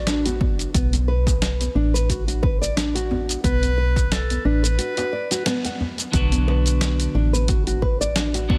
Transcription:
Already playing: A1 F#4
0.07 D4, snare, closed hi-hat, shaker
0.25 F#4, closed hi-hat, djembe tone, shaker
0.41 kick, djembe bass
0.59 closed hi-hat, djembe slap, shaker
0.74 B1 B3, kick, closed hi-hat, shaker
0.93 closed hi-hat, djembe tone, djembe bass, shaker
1.08 B4
1.27 kick, closed hi-hat, djembe slap, djembe tone, shaker
1.42 snare, closed hi-hat, shaker
1.61 closed hi-hat, djembe tone, shaker
1.75 A1 D4
1.94 B4, djembe tone, shaker
2.09 F#4, kick, closed hi-hat, shaker
2.28 F#4, closed hi-hat, shaker
2.43 B4, kick
2.62 D5, shaker
2.77 D4, snare, closed hi-hat, shaker
2.95 F#4, closed hi-hat, shaker
3.11 djembe tone, djembe bass
3.29 closed hi-hat, djembe slap, shaker
3.44 B1 B3 B4, kick, closed hi-hat, shaker
3.63 closed hi-hat, djembe tone, djembe bass, shaker
3.78 B4
3.96 kick, closed hi-hat, djembe slap, djembe tone, shaker
4.12 A4, snare, closed hi-hat, shaker
4.30 closed hi-hat, djembe tone, shaker
4.45 A1 D4 B4
4.63 B4, closed hi-hat, djembe tone, shaker
4.79 F#4, closed hi-hat, shaker
4.97 F#4, closed hi-hat, djembe slap, shaker
5.13 D5
5.31 F#4, snare, closed hi-hat, djembe slap, shaker
5.46 B3, snare, closed hi-hat, shaker
5.65 F#5, closed hi-hat, djembe tone, shaker
5.80 djembe bass
5.98 closed hi-hat, djembe slap, shaker
6.12 B1 D3 F#3 B3 D4, kick, closed hi-hat, shaker
6.16 F#4
6.32 closed hi-hat, djembe bass, shaker
6.48 B4, djembe slap
6.66 closed hi-hat, shaker
6.81 snare, closed hi-hat, shaker
7.00 closed hi-hat, shaker
7.15 A1 D4
7.33 B4, djembe tone, shaker
7.48 F#4, kick, closed hi-hat, djembe tone, shaker
7.67 F#4, closed hi-hat, shaker
7.82 B4, kick
8.01 D5, shaker
8.16 D4, snare, closed hi-hat, shaker
8.34 F#4, closed hi-hat, djembe slap, shaker
8.49 D3 F#3 B3 D4 F#4, kick, djembe bass

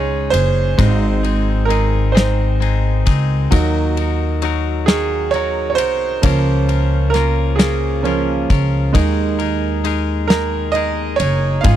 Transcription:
Already playing: C#2 G#3 C#4 D#4 G#4 C#5
0.30 F#1 D#4 G#4 C5, ride
0.35 C#4
0.78 G#1 G#2 D#3 G#3 C4 D#4 G#4, kick, ride
1.23 G#3 C4 D#4 G#4, ride
1.65 G#3 A#4
1.70 C4 D#4 G#4, ride
2.12 G#3 C4 D#4 G#4 C5
2.16 G#2 D#3, snare, ride
2.60 G#3 C4 D#4 G#4, ride
3.06 C#2 G#3 C4 D#4 G#4, kick, ride
3.51 D#2 D#3 F#3 A#3 D#4 F#4 A#4, kick, ride
3.97 D#4 F#4 A#4, ride
4.42 F#3 D#4 F#4 A#4, ride
4.86 F#3 D#4 F#4 G#4 A#4, snare, ride
4.90 D#3
5.31 F#3 D#4 C#5, ride
5.35 F#4 A#4
5.70 C#5
5.75 C2 A#4 C5, ride
5.80 D#4 F#4
6.22 C#2 C#3 F3 A#3 C#4 F4, kick, ride
6.26 A#4
6.69 C#4 F4 A#4, ride
7.10 A#4, ride
7.14 A#3 C#4 F4 A#4, snare
7.56 F4 G#4 A#4, snare, ride
7.60 C#3 A#3 C#4
8.03 F3 A#3 C#4 F4 A#4, ride
8.50 C#2 C#4 F4 A#4, kick, ride
8.93 D#2 D#3 G#3 A#3 D#4 G#4 A#4, kick, ride
9.39 D#4 G#4 A#4, ride
9.84 G#3 D#4 G#4 A#4, ride
10.28 D#3 G#3 D#4 G#4 A#4, snare, ride
10.72 G#3 D#4 D#5, ride
10.76 G#4 A#4
11.16 F#1 A#4 C#5, ride
11.21 D#4 G#4
11.61 G#2 G#3 C#4 F4 F5, kick, ride
11.65 G#1 C#3 G#3 C#4 F4 G#4

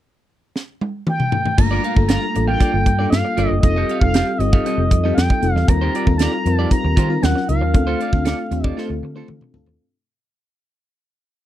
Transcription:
0.56 snare
0.81 high tom
1.07 G5, mid tom
1.20 mid tom
1.32 floor tom
1.45 floor tom
1.57 G1 G3 A3 A#3 D4 F4 A#5, muted clean electric guitar stroke, kick, crash
1.71 F4 A#4 D5
1.83 F4 A#4 F5, closed hi-hat
1.96 G1 G3 A#3 D4 F4 A4, muted clean electric guitar stroke, kick
2.09 F4 A#4 F5 A#5, snare, closed hi-hat
2.22 muted clean electric guitar stroke
2.34 A1 G3 A#3 D4 F4 A4, muted clean electric guitar stroke, closed hi-hat
2.48 F4 A#4 F5 G5
2.60 G3 A#3 D4 F4 A4 A#4 D5, kick, closed hi-hat
2.74 G1, muted clean electric guitar stroke
2.86 G2, muted clean electric guitar stroke, kick, closed hi-hat
2.99 G3 A#3 D4 F4 A4 A#4 D5
3.10 G2 F5, muted clean electric guitar stroke, snare, closed hi-hat
3.25 muted clean electric guitar stroke
3.37 G1 G3 A#3 D4 F4 A4 A#4 D5, closed hi-hat
3.51 F#1, muted clean electric guitar stroke
3.61 F1 G3 C4 D#4 F4 A4 D#5, muted clean electric guitar stroke, kick, closed hi-hat
3.76 G4 A4 D#5
3.89 G4 A4 F5, closed hi-hat
4.00 F1 G3 C4 D#4 F4 A4 F5, muted clean electric guitar stroke, kick
4.14 G4 A4 F5, snare, closed hi-hat
4.27 muted clean electric guitar stroke
4.38 G1 G3 C4 D#4 F4 G4 D#5, muted clean electric guitar stroke, closed hi-hat
4.53 G4 A4 F5, kick
4.65 G3 C4 D#4 F4 G4 A4 D#5, closed hi-hat
4.78 F1, muted clean electric guitar stroke
4.91 F2, muted clean electric guitar stroke, kick, closed hi-hat
5.04 G3 C4 D#4 F4 G4 A4 D#5
5.15 F2 G5, muted clean electric guitar stroke, snare, closed hi-hat
5.30 muted clean electric guitar stroke, kick
5.42 F1 G3 C4 D#4 F4 A4, closed hi-hat
5.54 E2 F5, muted clean electric guitar stroke, snare
5.68 D#2 G3 C4 D#4 F4 A#4 A#5, muted clean electric guitar stroke, kick, closed hi-hat
5.81 F4 G4 C5
5.94 F4 G4 D5, closed hi-hat
6.06 D#2 G3 C4 D#4 F4 A4, muted clean electric guitar stroke, kick
6.18 F4 G4 A#5, snare, closed hi-hat
6.22 D5
6.33 muted clean electric guitar stroke
6.45 F2 G3 C4 D#4 F4 A#4, muted clean electric guitar stroke, closed hi-hat
6.54 A5
6.59 F4 G4 D5
6.71 G3 C4 D#4 F4 G4 A#5, muted clean electric guitar stroke, kick, closed hi-hat
6.84 D#2, muted clean electric guitar stroke
6.97 D#3 F4 G4 C5, kick, closed hi-hat
7.09 G3 C4 D#4 F4 A#4, muted clean electric guitar stroke
7.22 D#2 F#3 C#4 D#4 F4 A#4 F#5, muted clean electric guitar stroke, snare, closed hi-hat
7.35 muted clean electric guitar stroke, snare
7.49 C#2 F#3 C#4 D#4 F4 A#4 F5, closed hi-hat
7.61 D#2, muted clean electric guitar stroke
7.74 D2 A3 C4 D4 F4 A4, muted clean electric guitar stroke, kick, closed hi-hat
7.87 F4 A4 C5
8.00 F4 A4 D5, closed hi-hat
8.13 D2 A3 C4 D4 F4 A4, muted clean electric guitar stroke, kick
8.25 F4 A4 D5, snare, closed hi-hat
8.39 muted clean electric guitar stroke
8.51 D#2 A3 C4 D4 F4 G4, muted clean electric guitar stroke, closed hi-hat
8.64 F4 A4 D5 D#5, kick
8.77 A3 C4 D4 F4 A4 C5, snare
8.90 D2, muted clean electric guitar stroke
9.02 D3, muted clean electric guitar stroke
9.15 A3 C4 D4 F4 A4 C5
9.28 D3, muted clean electric guitar stroke, mid tom
9.41 muted clean electric guitar stroke, mid tom
9.53 D2 A3 C4 D4 F4 A4, floor tom
9.66 D#2, muted clean electric guitar stroke, floor tom

